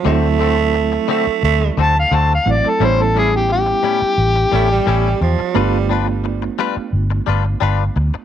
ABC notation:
X:1
M:4/4
L:1/16
Q:1/4=87
K:Ador
V:1 name="Harmonica"
z8 z2 a =f a f d A | c A ^G =G G12 | z16 |]
V:2 name="Clean electric guitar"
[D,A,CF]2 [D,A,CF] z3 [D,A,CF] z3 [D,A,CF] z [D,A,CF]2 z2 | [A,,G,^CE]2 [A,,G,CE] z3 [A,,G,CE] z3 [A,,G,CE] z [A,,G,CE]2 z2 | [G,D=FB]2 [G,DFB] z3 [G,DFB] z3 [G,DFB] z [G,DFB]2 z2 |]
V:3 name="Reed electric piano"
[F,A,CE]12- [F,A,CE]2 [F,A,CE]2 | [G,B,^CE]16 | [A,B,D=F]16 |]
V:4 name="Tenor saxophone" clef=bass
A,6 A,2 A,2 z6 | z8 z2 A, G, G,2 =F,2 | G,2 z12 z2 |]
V:5 name="Fingered electric bass" clef=bass
D,,6- D,, z D,,2 D,,2 D,,2 A,,, z | A,,,6- A,,, z A,,,2 A,,,2 A,,,2 E,, z | G,,,6- G,,, z G,,,2 G,,,2 G,,,2 D,, z |]